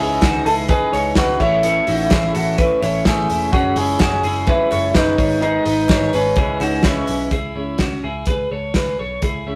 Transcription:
Already playing: clean electric guitar D#4
0.00 picked electric bass C#2, clean electric guitar E3 G#3 C#4 E4 G#4
0.21 picked electric bass C#2, clean electric guitar C#3 E3 G#3 D#4 F#4, kick, snare, clap, closed hi-hat
0.45 picked electric bass C#2, clean electric guitar E3 G#3 D#4 E4 G#4 A4, open hi-hat
0.68 clean electric guitar C#3 E3 G#3 D#4 G#4 B4, kick, closed hi-hat
0.92 picked electric bass C#2, clean electric guitar E3 G#3 D#4 A4 C#5, clap, open hi-hat
1.15 picked electric bass C#2, clean electric guitar C#3 E3 G#3 D#4 F#4 G#4 B4, kick, snare, clap, closed hi-hat
1.40 picked electric bass A1, clean electric guitar A3 C#4 E4 A4 C#5, kick, crash
1.63 clean electric guitar A2 E3 A3 C#4 E4 A4, closed hi-hat
1.86 picked electric bass A1, clean electric guitar A3 C#4 D#4 E4 F#4, open hi-hat
2.10 picked electric bass A1, clean electric guitar A2 E3 A3 C#4 E4 G#4, kick, snare, clap, closed hi-hat
2.34 picked electric bass A1, clean electric guitar A3 C#4 E4 F#4 A4, open hi-hat
2.57 clean electric guitar E3 A3 C#4 E4 B4, kick, closed hi-hat
2.81 picked electric bass A1, clean electric guitar A3 C#4 E4 A4 C#5, clap, open hi-hat
3.05 picked electric bass A1, clean electric guitar A2 E3 A3 C#4 E4 G#4, kick, snare, clap, closed hi-hat
3.29 picked electric bass E1, clean electric guitar A3 C#4 E4, open hi-hat
3.52 picked electric bass F#1, clean electric guitar F#3 G#3 C#4 F#4 G#4, kick, closed hi-hat
3.75 picked electric bass F#1, clean electric guitar G#3 C#4 E4 F#4 G#4, open hi-hat
3.98 picked electric bass F#1, clean electric guitar F#3 G#3 C#4 F#4 G#4, kick, snare, clap, closed hi-hat
4.23 picked electric bass F#1, clean electric guitar G#3 C#4 E4 F#4 G#4, open hi-hat
4.46 clean electric guitar F#3 G#3 C#4 E4 F#4 G#4 B4, kick, closed hi-hat
4.70 picked electric bass F#1, clean electric guitar G#3 C#4 F#4 A4 C#5, clap, open hi-hat
4.93 picked electric bass F#1, clean electric guitar F#3 G#3 C#4 D#4 F#4 G#4 B4, kick, snare, clap, closed hi-hat
5.17 picked electric bass G#1, clean electric guitar G#3 B3 D#4 G#4 C#5, kick, open hi-hat
5.40 clean electric guitar G#2 D#3 G#3 B3 D#4 G#4, closed hi-hat
5.64 picked electric bass G#1, clean electric guitar G#3 B3 D#4 B4 D#5, open hi-hat
5.88 picked electric bass G#1, clean electric guitar G#2 D#3 G#3 B3 D#4 G#4 C#5, kick, snare, clap, closed hi-hat
6.13 picked electric bass G#1, clean electric guitar G#3 B3 C#4 D#4 G#4 B4, open hi-hat
6.36 picked electric bass C#2, clean electric guitar C#3 E3 G#3 C#4 E4 G#4, kick, closed hi-hat
6.59 picked electric bass C#2, clean electric guitar E3 G#3 C#4 D#4 F#4, clap, open hi-hat
6.83 picked electric bass C#2, clean electric guitar C#3 E3 G#3 C#4 E4, kick, snare, clap, closed hi-hat
7.07 picked electric bass B1, clean electric guitar E3 G#3 C#4, open hi-hat
7.31 picked electric bass C#2, clean electric guitar E4 G#4, kick, closed hi-hat
7.56 picked electric bass C#2, clean electric guitar C#4 E4
7.78 picked electric bass C#2, clean electric guitar C#4 F#4, kick, snare, closed hi-hat
8.04 picked electric bass C#2, clean electric guitar E4 G#4
8.26 picked electric bass C#2, clean electric guitar G#4 B4, kick, closed hi-hat
8.52 picked electric bass C#2, clean electric guitar A4 C#5
8.74 picked electric bass C#2, clean electric guitar G#4 B4, kick, snare, closed hi-hat
8.99 picked electric bass B1, clean electric guitar A4 C#5
9.22 picked electric bass C#2, clean electric guitar E4 G#4, kick, closed hi-hat
9.47 picked electric bass C#2, clean electric guitar C#4 E4

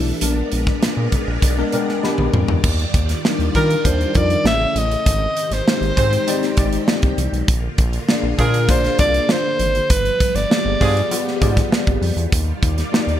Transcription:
Already playing: analog synth bass B1, tine electric piano E3 A3 D4 E4 F#4 G4, string machine G3 D4 A4 E5
0.21 analog synth bass A#1, tine electric piano G#3 B3 D4 A#4, string machine G#3 B3 A#4 D5, closed hi-hat
0.52 analog synth bass A#1, closed hi-hat
0.67 kick, snare
0.82 analog synth bass A#2, snare, closed hi-hat, high conga
0.97 analog synth bass A#2
1.12 kick, closed hi-hat, muted conga, low conga
1.27 analog synth bass A#1
1.42 analog synth bass B1, kick, closed hi-hat, muted conga
1.57 tine electric piano G#3 B3 D4 A#4
1.72 tine electric piano G#3 B3 D4 A#4 G5, closed hi-hat, muted conga, low conga
1.89 tine electric piano G#5, snare
2.03 tine electric piano G#3 B3 D4 G4 B5, snare, high conga
2.18 analog synth bass A#1, high tom
2.33 analog synth bass F2, mid tom, high conga
2.48 analog synth bass E2, floor tom
2.63 analog synth bass D#2, string machine D#3 G3 F4 D5, kick, crash
2.79 closed hi-hat
2.94 analog synth bass D#2, kick, closed hi-hat
3.09 snare, closed hi-hat
3.25 tine electric piano G3 D4 D#4 F4 A#4, snare, high conga
3.39 analog synth bass D#2, closed hi-hat
3.55 analog synth bass D#3, tine electric piano G3 D4 D#4 F4 A#4, horn section G3 A#3 F4 A#4, alto saxophone A#4, kick, closed hi-hat, muted conga
3.71 closed hi-hat
3.85 analog synth bass D#2, tine electric piano G3 D4 D#4 F4 A#4, alto saxophone C5, kick, closed hi-hat, muted conga
4.01 closed hi-hat
4.15 analog synth bass F2, tine electric piano G3 D4 D#4 F4 A#4, alto saxophone D5, kick, closed hi-hat, muted conga
4.30 closed hi-hat
4.45 analog synth bass A1, string machine C#3 A3 E4, tine electric piano A3 C#4 E4 G#4 C#5, alto saxophone E5, snare, high conga
4.75 analog synth bass A1, alto saxophone D#5, closed hi-hat, high conga
4.91 closed hi-hat
5.06 analog synth bass G#1, string machine D#3 C4 G4, kick, closed hi-hat
5.37 closed hi-hat
5.51 analog synth bass G#1, alto saxophone C5, snare, closed hi-hat
5.67 tine electric piano G#3 C4 D#4 G4 C5, snare, high conga
5.81 analog synth bass G#1, closed hi-hat
5.97 analog synth bass G#2, tine electric piano G#3 C4 D#4 G4 C5, horn section G#3 C4 G4 C5, kick, closed hi-hat, muted conga, low conga
6.13 closed hi-hat
6.27 tine electric piano G#3 C4 D#4 G4 D5, closed hi-hat, muted conga
6.43 snare, closed hi-hat
6.57 analog synth bass G#1, tine electric piano G#3 C4 D#4 G4 D5, kick, closed hi-hat, muted conga, low conga
6.73 closed hi-hat
6.88 snare, high conga
7.02 analog synth bass C2, kick, closed hi-hat
7.18 analog synth bass C2, closed hi-hat, high conga
7.32 analog synth bass B1, closed hi-hat
7.48 analog synth bass A#1, string machine D3 A#3 F4, kick, closed hi-hat
7.78 analog synth bass A#1, kick, closed hi-hat
7.93 closed hi-hat
8.08 tine electric piano A#3 D4 F4 G#4 D5, snare, high conga
8.23 analog synth bass A#1
8.38 analog synth bass A#2, horn section F3 G#3 D4 G#4, tine electric piano A#3 D4 F4 G#4 F5, alto saxophone A#4, kick, closed hi-hat, muted conga
8.54 closed hi-hat
8.68 analog synth bass A#1, tine electric piano A#3 D4 F4 G#4 D5, alto saxophone C5, kick, closed hi-hat, muted conga
8.84 snare, closed hi-hat
8.99 analog synth bass C2, tine electric piano A#3 D4 F4 G#4 D5, alto saxophone D5, kick, closed hi-hat
9.14 closed hi-hat
9.29 alto saxophone C5, snare, high conga
9.59 analog synth bass G#1, closed hi-hat, high conga
9.75 closed hi-hat
9.90 analog synth bass G1, string machine F3 G3 B3, alto saxophone B4, kick, closed hi-hat
10.05 closed hi-hat
10.20 kick, closed hi-hat
10.35 analog synth bass G1, alto saxophone D5, snare, closed hi-hat
10.50 tine electric piano B3 F4 G4 G#4 D5, snare, high conga
10.65 analog synth bass G1
10.80 analog synth bass G2, horn section F3 G#3 D4 G#4, tine electric piano B3 F4 G4 G#4 F5, kick, open hi-hat, muted conga, low conga
10.97 closed hi-hat
11.11 tine electric piano B3 F4 G4 G#4 D5, closed hi-hat, muted conga
11.28 snare
11.41 analog synth bass G#2, tine electric piano B3 F4 G4 G#4 D5, kick, closed hi-hat, low conga
11.57 kick, snare, closed hi-hat
11.72 snare, high conga
11.87 analog synth bass G#1, kick, closed hi-hat
12.01 analog synth bass F2, open hi-hat, high conga
12.16 analog synth bass E2, closed hi-hat
12.32 analog synth bass D#2, string machine D#3 G3 F4 D5, kick, closed hi-hat
12.62 analog synth bass D#2, kick, closed hi-hat
12.78 snare, closed hi-hat
12.92 tine electric piano A#3 D#4 F4 G4 D5, snare, high conga
13.07 analog synth bass D#2, closed hi-hat

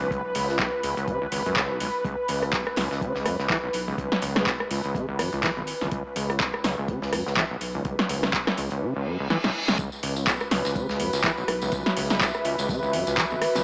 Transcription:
Already playing: analog synth bass B1, analog synth pad B4
0.01 acid bass C#2
0.11 acid bass C#2, kick, closed hi-hat
0.35 acid bass C#2, closed hi-hat, open hi-hat
0.49 snare
0.59 acid bass B1, kick, snare, clap, closed hi-hat
0.84 analog synth bass C#2, acid bass C#2, closed hi-hat, open hi-hat
0.97 acid bass C#2, closed hi-hat
1.08 analog synth bass G#1, acid bass C#3, kick, closed hi-hat
1.22 acid bass C#2
1.32 analog synth bass G#1, acid bass C#2, closed hi-hat, open hi-hat
1.46 analog synth bass C#2, acid bass F#2, closed hi-hat
1.55 acid bass C#2, kick, snare, clap, closed hi-hat
1.70 acid bass B1
1.80 acid bass B1, analog synth bass C#2, closed hi-hat, open hi-hat
2.05 acid bass C#2, kick, closed hi-hat
2.28 acid bass C#2, closed hi-hat, open hi-hat
2.42 cross-stick, closed hi-hat
2.53 acid bass B1, kick, snare, clap, closed hi-hat
2.67 cross-stick
2.76 analog synth bass C#2, acid bass C#2, snare, closed hi-hat, open hi-hat
2.91 acid bass C#2, snare
3.01 analog synth bass C#2, acid bass C#3, kick, closed hi-hat
3.15 acid bass C#2, snare
3.25 analog synth bass C#2, acid bass F#2, cross-stick, closed hi-hat, open hi-hat
3.39 acid bass C#2, snare
3.50 acid bass E3, kick, snare, clap, closed hi-hat
3.64 acid bass B1
3.73 analog synth bass B1, closed hi-hat, open hi-hat
3.88 acid bass C#2
3.98 acid bass C#2, kick, closed hi-hat
4.12 snare
4.22 acid bass C#2, closed hi-hat, open hi-hat
4.36 cross-stick, snare
4.46 acid bass B1, kick, snare, clap, closed hi-hat
4.60 cross-stick
4.71 analog synth bass C#2, acid bass C#2, closed hi-hat, open hi-hat
4.84 acid bass C#2, closed hi-hat
4.95 analog synth bass G#1, acid bass C#3, kick, closed hi-hat
5.09 acid bass C#2
5.19 analog synth bass G#1, acid bass F#2, cross-stick, closed hi-hat, open hi-hat
5.33 acid bass C#2, analog synth bass C#2, closed hi-hat
5.43 acid bass E3, kick, snare, clap, closed hi-hat
5.57 analog synth bass G#1, acid bass B1
5.67 closed hi-hat, open hi-hat
5.81 analog synth bass G#1, acid bass C#2, snare
5.91 acid bass C#2, kick, closed hi-hat
6.16 acid bass C#2, closed hi-hat, open hi-hat
6.30 cross-stick, closed hi-hat
6.39 acid bass B1, kick, snare, clap, closed hi-hat
6.54 cross-stick
6.64 analog synth bass C#2, acid bass C#2, snare, closed hi-hat, open hi-hat
6.78 acid bass C#2
6.88 analog synth bass C#2, acid bass C#3, kick, closed hi-hat
7.02 acid bass C#2, snare
7.13 analog synth bass C#2, acid bass F#2, cross-stick, closed hi-hat, open hi-hat
7.27 acid bass C#2, snare
7.37 acid bass E3, kick, snare, clap, closed hi-hat
7.51 acid bass B1
7.61 analog synth bass B1, closed hi-hat, open hi-hat
7.75 acid bass C#2
7.85 acid bass C#2, kick, closed hi-hat
7.99 snare
8.09 acid bass C#2, closed hi-hat, open hi-hat
8.23 cross-stick, snare
8.33 acid bass B1, kick, snare, clap, closed hi-hat
8.47 cross-stick, snare
8.57 analog synth bass C#2, acid bass C#2, closed hi-hat, open hi-hat
8.71 acid bass C#2, closed hi-hat
8.82 acid bass C#3, reverse cymbal
8.96 acid bass C#2
9.06 acid bass F#2
9.20 acid bass C#2
9.30 acid bass E3, snare
9.44 acid bass B1, snare
9.68 acid bass C#2, snare
9.79 acid bass C#2, ambient pad F#4, analog synth pad B4, kick, closed hi-hat, tambourine
9.92 tambourine
10.03 acid bass C#2, closed hi-hat, open hi-hat
10.14 ambient pad B4, closed hi-hat, tambourine
10.27 acid bass B1, kick, snare, clap, closed hi-hat, tambourine
10.40 cross-stick, tambourine
10.51 analog synth bass C#2, acid bass C#2, ambient pad E5, snare, closed hi-hat, open hi-hat
10.65 acid bass C#2, snare, tambourine
10.76 analog synth bass C#2, acid bass C#3, kick, closed hi-hat, tambourine
10.89 acid bass C#2, snare, tambourine
11.00 analog synth bass C#2, acid bass F#2, closed hi-hat, open hi-hat
11.13 acid bass C#2, snare, tambourine
11.23 acid bass E3, kick, snare, clap, closed hi-hat, tambourine
11.37 acid bass B1, tambourine
11.48 analog synth bass B1, cross-stick, closed hi-hat, open hi-hat
11.62 acid bass C#2, tambourine
11.72 acid bass C#2, kick, closed hi-hat, tambourine
11.86 snare, tambourine
11.96 acid bass C#2, closed hi-hat, open hi-hat
12.10 snare, tambourine
12.21 acid bass B1, kick, snare, clap, closed hi-hat, tambourine
12.34 cross-stick, tambourine
12.45 acid bass C#2, analog synth bass C#2, closed hi-hat, open hi-hat
12.58 acid bass C#2, closed hi-hat, tambourine
12.69 analog synth bass G#1, acid bass C#3, kick, closed hi-hat, tambourine
12.83 acid bass C#2, tambourine
12.93 analog synth bass G#1, acid bass F#2, closed hi-hat, open hi-hat
13.07 acid bass C#2, analog synth bass C#2, closed hi-hat, tambourine
13.17 acid bass E3, kick, snare, clap, closed hi-hat, tambourine
13.30 analog synth bass G#1, acid bass B1, tambourine
13.42 cross-stick, closed hi-hat, open hi-hat
13.55 analog synth bass G#1, acid bass C#2, snare, tambourine

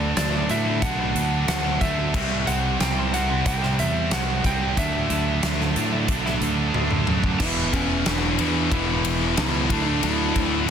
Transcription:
Already playing: fingered electric bass D2, distorted electric guitar D3 F#3 A3 D4 F#4, lead electric guitar D5
0.16 fingered electric bass D2, distorted electric guitar D3 F#3 A3 D4 F#4, lead electric guitar D5, muted clean electric guitar stroke, snare, closed hi-hat
0.32 clean electric guitar D3 A3 B3 F#4
0.49 fingered electric bass A2, distorted electric guitar D3 F#3 A3 D4 F#4, lead electric guitar E5, closed hi-hat
0.65 clean electric guitar D3 A3 B3 F#4
0.82 fingered electric bass B1, distorted electric guitar D3 F#3 A3 D4 F#4, lead electric guitar F#5, muted clean electric guitar stroke, kick, closed hi-hat
0.98 clean electric guitar D3 A3 B3 F#4
1.15 fingered electric bass D2, closed hi-hat
1.48 fingered electric bass D2, distorted electric guitar D3 F#3 A3 D4 F#4, lead electric guitar F#5, snare, closed hi-hat
1.64 muted clean electric guitar stroke
1.81 fingered electric bass D2, distorted electric guitar D3 F#3 A3 D4 F#4, lead electric guitar E5, kick, closed hi-hat
2.14 fingered electric bass C2, distorted electric guitar C3 G3 C4 E4 G4, kick, crash
2.30 muted clean electric guitar stroke
2.46 fingered electric bass C2, clean electric guitar C3 G3 C4 E4, lead electric guitar F#5, closed hi-hat
2.80 fingered electric bass C2, distorted electric guitar C3 G3 C4 E4 G4, lead electric guitar G5, muted clean electric guitar stroke, snare, closed hi-hat
2.96 clean electric guitar C3 G3 C4 E4
3.13 distorted electric guitar C3 G3 C4 E4 G4, lead electric guitar F#5, closed hi-hat
3.29 clean electric guitar C3 G3 C4 E4
3.46 fingered electric bass C2, distorted electric guitar C3 G3 C4 E4 G4, lead electric guitar G5, muted clean electric guitar stroke, kick, closed hi-hat
3.63 clean electric guitar C3 G3 C4 E4, snare
3.79 fingered electric bass E2, lead electric guitar E5, closed hi-hat
4.11 fingered electric bass C2, distorted electric guitar C3 G3 C4 E4 G4, lead electric guitar F#5, snare, closed hi-hat
4.28 muted clean electric guitar stroke
4.44 fingered electric bass C2, distorted electric guitar C3 G3 C4 E4 G4, lead electric guitar G5, kick, closed hi-hat
4.77 fingered electric bass D2, distorted electric guitar D3 F#3 A3 D4 F#4, lead electric guitar E5, kick, closed hi-hat
4.94 muted clean electric guitar stroke
5.10 fingered electric bass D2, clean electric guitar D3 F#3 A3 E4, closed hi-hat
5.43 fingered electric bass D2, distorted electric guitar D3 F#3 A3 D4 F#4, muted clean electric guitar stroke, snare, closed hi-hat
5.59 clean electric guitar D3 F#3 A3 E4, snare
5.76 fingered electric bass A2, distorted electric guitar D3 F#3 A3 D4 F#4, closed hi-hat
5.92 clean electric guitar D3 F#3 A3 E4
6.08 fingered electric bass B1, distorted electric guitar D3 F#3 A3 D4 F#4, muted clean electric guitar stroke, kick, closed hi-hat
6.25 clean electric guitar D3 F#3 A3 E4, snare
6.41 fingered electric bass D2, closed hi-hat
6.73 fingered electric bass D2, distorted electric guitar D3 F#3 A3 D4 F#4, high tom
6.90 muted clean electric guitar stroke, mid tom
7.06 fingered electric bass F#2, distorted electric guitar D3 F#3 A3 D4 F#4, mid tom
7.24 kick
7.40 fingered electric bass E1, distorted electric guitar E2 B2 E3 B3 E4 G#4 B4, lead electric guitar E4, kick, crash
7.73 fingered electric bass E1, lead electric guitar C#4, kick, ride
8.05 fingered electric bass E1, distorted electric guitar E2 B2 E3 B3 E4 G#4 B4, lead electric guitar D4, snare, ride
8.38 fingered electric bass E2, distorted electric guitar E2 B2 E3 B3 E4 G#4 B4, ride
8.71 fingered electric bass E1, distorted electric guitar E2 B2 E3 B3 E4 G#4 B4, lead electric guitar E4, kick, ride
9.05 ride
9.37 fingered electric bass C#2, distorted electric guitar E2 B2 E3 B3 E4 G#4 B4, lead electric guitar E4, snare, ride
9.70 fingered electric bass D2, distorted electric guitar D3 F#3 A3 D4 A4, kick, ride
9.89 lead electric guitar D4
10.03 fingered electric bass D2, distorted electric guitar D3 F#3 A3 D4 A4, lead electric guitar E4, ride
10.36 fingered electric bass D2, kick, ride

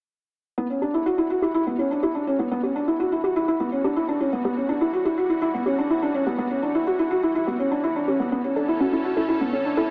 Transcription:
0.58 analog synth pad E2 E3 G3 F#4, felt piano B3, synth arpeggio sound E4
0.70 felt piano C#4
0.82 felt piano D4, synth arpeggio sound G4
0.94 felt piano E4
1.06 synth arpeggio sound E4, felt piano F#4
1.18 felt piano E4, synth arpeggio sound E4
1.30 felt piano F#4
1.42 felt piano E4, synth arpeggio sound G4
1.54 felt piano E4
1.67 felt piano B3, synth arpeggio sound E4
1.79 felt piano C#4, synth arpeggio sound E4
1.91 felt piano D4
2.03 felt piano E4, synth arpeggio sound G4
2.15 felt piano D4
2.27 felt piano C#4, synth arpeggio sound E4
2.39 felt piano B3, synth arpeggio sound E4
2.51 felt piano B3
2.63 felt piano C#4, synth arpeggio sound G4
2.76 felt piano D4
2.88 felt piano E4, synth arpeggio sound E4
3.00 synth arpeggio sound E4, felt piano F#4
3.12 felt piano E4
3.24 felt piano F#4, synth arpeggio sound G4
3.36 felt piano E4
3.48 felt piano E4, synth arpeggio sound E4
3.60 felt piano B3, synth arpeggio sound E4
3.72 felt piano C#4
3.84 felt piano D4, synth arpeggio sound G4
3.96 felt piano E4
4.08 felt piano D4, synth arpeggio sound E4
4.20 felt piano C#4, synth arpeggio sound E4
4.33 felt piano B3
4.45 felt piano B3, synth arpeggio sound G4
4.57 felt piano C#4
4.69 felt piano D4, synth arpeggio sound E4
4.81 felt piano E4, synth arpeggio sound E4
4.93 felt piano F#4
5.05 felt piano E4, synth arpeggio sound G4
5.18 felt piano F#4
5.30 synth arpeggio sound E4, felt piano E4
5.42 synth arpeggio sound E4, felt piano E4
5.54 felt piano B3
5.66 felt piano C#4, synth arpeggio sound G4
5.78 felt piano D4
5.90 synth arpeggio sound E4, felt piano E4
6.03 felt piano D4, synth arpeggio sound E4
6.14 felt piano C#4
6.27 felt piano B3, synth arpeggio sound G4
6.38 felt piano B3
6.51 felt piano C#4, synth arpeggio sound E4
6.63 felt piano D4, synth arpeggio sound E4
6.75 felt piano E4
6.87 felt piano F#4, synth arpeggio sound G4
6.99 felt piano E4
7.11 synth arpeggio sound E4, felt piano F#4
7.23 felt piano E4, synth arpeggio sound E4
7.35 felt piano E4
7.47 felt piano B3, synth arpeggio sound G4
7.59 felt piano C#4
7.71 felt piano D4, synth arpeggio sound E4
7.84 felt piano E4, synth arpeggio sound E4
7.96 felt piano D4
8.08 felt piano C#4, synth arpeggio sound G4
8.20 felt piano B3
8.32 analog synth pad A2 C#4 A4, felt piano B3, synth arpeggio sound C#4
8.44 felt piano C#4
8.56 felt piano D4, synth arpeggio sound A4
8.68 felt piano E4
8.80 synth arpeggio sound C#4, felt piano F#4
8.92 synth arpeggio sound C#4, felt piano E4
9.05 felt piano F#4
9.17 felt piano E4, synth arpeggio sound A4
9.29 felt piano E4
9.41 felt piano B3, synth arpeggio sound C#4
9.53 synth arpeggio sound C#4, felt piano C#4
9.65 felt piano D4
9.77 felt piano E4, synth arpeggio sound A4

